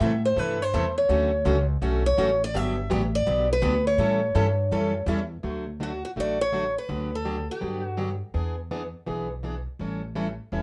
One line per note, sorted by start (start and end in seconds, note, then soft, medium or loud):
0.00 0.36 A2 medium
0.00 0.11 C3 medium
0.00 0.11 E3 medium
0.00 0.12 G3 medium
0.00 0.11 A3 medium
0.00 0.12 C4 medium
0.00 0.12 E4 loud
0.00 0.12 A4 loud
0.00 0.22 E5 medium
0.25 0.39 C5 medium
0.36 0.72 G2 medium
0.36 0.57 C3 medium
0.36 0.57 E3 medium
0.36 0.58 G3 medium
0.36 0.57 A3 medium
0.36 0.58 C4 medium
0.36 0.57 E4 medium
0.36 0.57 A4 medium
0.36 0.62 B4 medium
0.62 0.97 C5 medium
0.74 1.08 E2 medium
0.74 0.84 C3 medium
0.74 0.84 E3 loud
0.74 0.84 G3 medium
0.74 0.84 A3 medium
0.74 0.85 C4 medium
0.74 0.84 E4 medium
0.74 0.85 A4 medium
0.98 1.65 C#5 medium
1.09 1.44 D2 medium
1.09 1.30 D3 medium
1.09 1.30 F#3 medium
1.09 1.30 A3 medium
1.09 1.30 C#4 medium
1.09 1.30 F#4 medium
1.09 1.30 A4 medium
1.45 1.80 C#2 medium
1.45 1.56 D3 medium
1.45 1.56 F#3 medium
1.45 1.57 A3 medium
1.45 1.57 C#4 loud
1.45 1.57 F#4 loud
1.45 1.57 A4 medium
1.81 2.17 B1 medium
1.81 2.02 D3 medium
1.81 2.02 F#3 medium
1.81 2.02 A3 medium
1.81 2.03 C#4 medium
1.81 2.03 F#4 medium
1.81 2.03 A4 medium
2.06 2.42 C#5 loud
2.17 2.53 A1 medium
2.17 2.28 D3 medium
2.17 2.29 F#3 loud
2.17 2.29 A3 loud
2.17 2.29 C#4 medium
2.17 2.29 F#4 loud
2.17 2.29 A4 medium
2.44 2.56 D5 medium
2.54 2.90 G1 medium
2.54 2.75 D3 medium
2.54 2.75 F#3 medium
2.54 2.75 B3 medium
2.54 2.75 D4 medium
2.54 2.75 G4 medium
2.54 3.13 E5 loud
2.90 3.26 A1 medium
2.90 3.01 D3 medium
2.90 3.01 F#3 loud
2.90 3.01 B3 medium
2.90 3.01 D4 loud
2.90 3.01 G4 loud
3.15 3.48 D5 medium
3.26 3.61 B1 medium
3.26 3.47 D3 medium
3.26 3.47 F#3 medium
3.26 3.47 B3 medium
3.26 3.47 D4 medium
3.26 3.48 G4 medium
3.53 3.84 B4 loud
3.62 3.97 D2 medium
3.62 3.73 D3 medium
3.62 3.73 F#3 medium
3.62 3.73 B3 loud
3.62 3.73 D4 medium
3.62 3.74 G4 medium
3.87 5.05 C#5 medium
3.98 4.34 A2 medium
3.98 4.20 E3 medium
3.98 4.20 G3 medium
3.98 4.20 C#4 medium
3.98 4.20 E4 medium
3.98 4.20 A4 medium
4.35 4.70 G2 medium
4.35 4.46 E3 medium
4.35 4.46 G3 medium
4.35 4.46 C#4 medium
4.35 4.46 E4 loud
4.35 4.46 A4 loud
4.71 5.06 F#2 medium
4.71 4.92 E3 medium
4.71 4.92 G3 medium
4.71 4.92 C#4 medium
4.71 4.93 E4 medium
4.71 4.92 A4 medium
5.06 5.42 E2 medium
5.06 5.19 E3 medium
5.06 5.19 G3 medium
5.06 5.19 C#4 loud
5.06 5.19 E4 medium
5.06 5.19 A4 medium
5.43 6.01 D2 medium
5.43 5.64 D3 medium
5.43 5.64 F#3 medium
5.43 5.65 A3 medium
5.43 5.65 D4 medium
5.43 5.65 F#4 medium
5.80 5.91 D3 medium
5.80 5.91 F#3 medium
5.80 5.91 A3 medium
5.80 5.91 D4 medium
5.80 5.91 F#4 medium
5.80 6.02 F#4 medium
6.05 6.10 F#4 medium
6.16 6.74 A1 medium
6.16 6.37 D3 soft
6.16 6.37 F#3 medium
6.16 6.37 A3 medium
6.16 6.37 D4 medium
6.16 6.37 F#4 medium
6.16 6.41 D5 medium
6.41 6.74 C#5 medium
6.53 6.64 D3 medium
6.53 6.64 F#3 medium
6.53 6.64 A3 medium
6.53 6.64 D4 medium
6.53 6.64 F#4 medium
6.78 7.14 B4 medium
6.89 7.47 D2 medium
6.89 7.10 D3 medium
6.89 7.10 F#3 medium
6.89 7.10 B3 soft
6.89 7.10 D4 medium
6.89 7.10 G4 medium
7.15 7.47 A4 medium
7.25 7.36 D3 medium
7.25 7.36 F#3 medium
7.25 7.36 B3 medium
7.25 7.36 D4 medium
7.25 7.36 G4 medium
7.51 7.84 G4 medium
7.60 8.20 G2 medium
7.60 7.82 D3 medium
7.60 7.82 F#3 medium
7.60 7.82 B3 medium
7.60 7.82 D4 medium
7.60 7.82 G4 medium
7.84 7.96 F#4 medium
7.97 8.08 D3 medium
7.97 8.09 F#3 medium
7.97 8.09 B3 medium
7.97 8.09 D4 medium
7.97 8.09 G4 medium
8.34 8.92 E2 medium
8.34 8.55 E3 medium
8.34 8.55 B3 medium
8.34 8.55 D4 medium
8.34 8.55 G#4 medium
8.71 8.82 E3 medium
8.71 8.82 B3 medium
8.71 8.82 D4 medium
8.71 8.82 G#4 medium
9.06 9.65 B1 medium
9.06 9.27 E3 medium
9.06 9.27 B3 medium
9.06 9.28 D4 medium
9.06 9.28 G#4 medium
9.43 9.54 E3 medium
9.43 9.54 B3 medium
9.43 9.54 D4 medium
9.43 9.55 G#4 medium
9.79 10.37 A1 medium
9.79 10.01 E3 medium
9.79 10.00 G3 medium
9.79 10.01 C#4 medium
9.79 10.01 E4 medium
9.79 10.01 A4 medium
10.15 10.26 E3 medium
10.15 10.26 G3 medium
10.15 10.27 C#4 medium
10.15 10.27 E4 medium
10.15 10.27 A4 medium
10.52 10.62 E1 medium
10.52 10.62 E3 medium
10.52 10.62 G3 medium
10.52 10.62 C#4 medium
10.52 10.62 E4 medium
10.52 10.62 A4 medium